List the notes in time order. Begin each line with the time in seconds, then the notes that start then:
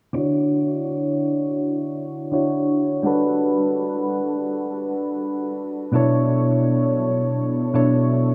0.13 D3 D4 E4 F#4
0.17 C#5
2.31 D3 D4 E4 F#4 C#5
3.03 G3 D4 F#4 A4
3.07 B4
5.92 B2 F#3 D4 E4 A4
5.96 C#5
7.74 B2 F#3 D4 E4 A4 C#5